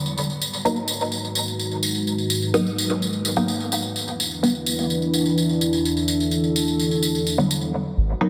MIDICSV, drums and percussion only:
0, 0, Header, 1, 2, 480
1, 0, Start_track
1, 0, Key_signature, 5, "minor"
1, 0, Tempo, 472441
1, 181, Time_signature, 4, 2, 24, 8
1, 8427, End_track
2, 0, Start_track
2, 0, Title_t, "Drums"
2, 59, Note_on_c, 9, 54, 40
2, 161, Note_off_c, 9, 54, 0
2, 178, Note_on_c, 9, 54, 45
2, 280, Note_off_c, 9, 54, 0
2, 302, Note_on_c, 9, 54, 22
2, 404, Note_off_c, 9, 54, 0
2, 422, Note_on_c, 9, 54, 85
2, 523, Note_off_c, 9, 54, 0
2, 543, Note_on_c, 9, 54, 36
2, 644, Note_off_c, 9, 54, 0
2, 666, Note_on_c, 9, 54, 44
2, 767, Note_off_c, 9, 54, 0
2, 772, Note_on_c, 9, 54, 22
2, 874, Note_off_c, 9, 54, 0
2, 891, Note_on_c, 9, 54, 88
2, 992, Note_off_c, 9, 54, 0
2, 1024, Note_on_c, 9, 54, 38
2, 1126, Note_off_c, 9, 54, 0
2, 1135, Note_on_c, 9, 54, 46
2, 1237, Note_off_c, 9, 54, 0
2, 1267, Note_on_c, 9, 54, 23
2, 1369, Note_off_c, 9, 54, 0
2, 1375, Note_on_c, 9, 54, 88
2, 1476, Note_off_c, 9, 54, 0
2, 1504, Note_on_c, 9, 54, 35
2, 1605, Note_off_c, 9, 54, 0
2, 1620, Note_on_c, 9, 54, 50
2, 1722, Note_off_c, 9, 54, 0
2, 1740, Note_on_c, 9, 54, 24
2, 1842, Note_off_c, 9, 54, 0
2, 1856, Note_on_c, 9, 54, 94
2, 1958, Note_off_c, 9, 54, 0
2, 1977, Note_on_c, 9, 54, 35
2, 2079, Note_off_c, 9, 54, 0
2, 2105, Note_on_c, 9, 54, 45
2, 2207, Note_off_c, 9, 54, 0
2, 2219, Note_on_c, 9, 54, 24
2, 2321, Note_off_c, 9, 54, 0
2, 2336, Note_on_c, 9, 54, 87
2, 2437, Note_off_c, 9, 54, 0
2, 2462, Note_on_c, 9, 54, 32
2, 2564, Note_off_c, 9, 54, 0
2, 2579, Note_on_c, 9, 54, 45
2, 2681, Note_off_c, 9, 54, 0
2, 2706, Note_on_c, 9, 54, 25
2, 2808, Note_off_c, 9, 54, 0
2, 2828, Note_on_c, 9, 54, 84
2, 2930, Note_off_c, 9, 54, 0
2, 2940, Note_on_c, 9, 54, 32
2, 3042, Note_off_c, 9, 54, 0
2, 3069, Note_on_c, 9, 54, 49
2, 3171, Note_off_c, 9, 54, 0
2, 3178, Note_on_c, 9, 54, 22
2, 3279, Note_off_c, 9, 54, 0
2, 3301, Note_on_c, 9, 54, 84
2, 3402, Note_off_c, 9, 54, 0
2, 3416, Note_on_c, 9, 54, 38
2, 3518, Note_off_c, 9, 54, 0
2, 3538, Note_on_c, 9, 54, 46
2, 3640, Note_off_c, 9, 54, 0
2, 3661, Note_on_c, 9, 54, 22
2, 3763, Note_off_c, 9, 54, 0
2, 3778, Note_on_c, 9, 54, 86
2, 3880, Note_off_c, 9, 54, 0
2, 3887, Note_on_c, 9, 54, 34
2, 3989, Note_off_c, 9, 54, 0
2, 4022, Note_on_c, 9, 54, 46
2, 4123, Note_off_c, 9, 54, 0
2, 4142, Note_on_c, 9, 54, 24
2, 4244, Note_off_c, 9, 54, 0
2, 4266, Note_on_c, 9, 54, 81
2, 4368, Note_off_c, 9, 54, 0
2, 4378, Note_on_c, 9, 54, 34
2, 4480, Note_off_c, 9, 54, 0
2, 4506, Note_on_c, 9, 54, 51
2, 4608, Note_off_c, 9, 54, 0
2, 4622, Note_on_c, 9, 54, 22
2, 4724, Note_off_c, 9, 54, 0
2, 4739, Note_on_c, 9, 54, 87
2, 4840, Note_off_c, 9, 54, 0
2, 4863, Note_on_c, 9, 54, 35
2, 4965, Note_off_c, 9, 54, 0
2, 4979, Note_on_c, 9, 54, 51
2, 5081, Note_off_c, 9, 54, 0
2, 5100, Note_on_c, 9, 54, 23
2, 5202, Note_off_c, 9, 54, 0
2, 5218, Note_on_c, 9, 54, 72
2, 5319, Note_off_c, 9, 54, 0
2, 5338, Note_on_c, 9, 54, 36
2, 5440, Note_off_c, 9, 54, 0
2, 5463, Note_on_c, 9, 54, 51
2, 5564, Note_off_c, 9, 54, 0
2, 5580, Note_on_c, 9, 54, 24
2, 5682, Note_off_c, 9, 54, 0
2, 5702, Note_on_c, 9, 54, 76
2, 5803, Note_off_c, 9, 54, 0
2, 5820, Note_on_c, 9, 54, 35
2, 5921, Note_off_c, 9, 54, 0
2, 5947, Note_on_c, 9, 54, 49
2, 6049, Note_off_c, 9, 54, 0
2, 6062, Note_on_c, 9, 54, 26
2, 6164, Note_off_c, 9, 54, 0
2, 6176, Note_on_c, 9, 54, 78
2, 6278, Note_off_c, 9, 54, 0
2, 6302, Note_on_c, 9, 54, 37
2, 6404, Note_off_c, 9, 54, 0
2, 6415, Note_on_c, 9, 54, 44
2, 6517, Note_off_c, 9, 54, 0
2, 6538, Note_on_c, 9, 54, 24
2, 6640, Note_off_c, 9, 54, 0
2, 6663, Note_on_c, 9, 54, 78
2, 6765, Note_off_c, 9, 54, 0
2, 6786, Note_on_c, 9, 54, 34
2, 6888, Note_off_c, 9, 54, 0
2, 6903, Note_on_c, 9, 54, 46
2, 7005, Note_off_c, 9, 54, 0
2, 7023, Note_on_c, 9, 54, 25
2, 7125, Note_off_c, 9, 54, 0
2, 7138, Note_on_c, 9, 54, 88
2, 7240, Note_off_c, 9, 54, 0
2, 7263, Note_on_c, 9, 54, 39
2, 7365, Note_off_c, 9, 54, 0
2, 7382, Note_on_c, 9, 54, 51
2, 7483, Note_off_c, 9, 54, 0
2, 7513, Note_on_c, 9, 54, 26
2, 7614, Note_off_c, 9, 54, 0
2, 7627, Note_on_c, 9, 54, 86
2, 7728, Note_off_c, 9, 54, 0
2, 7733, Note_on_c, 9, 54, 33
2, 7835, Note_off_c, 9, 54, 0
2, 8427, End_track
0, 0, End_of_file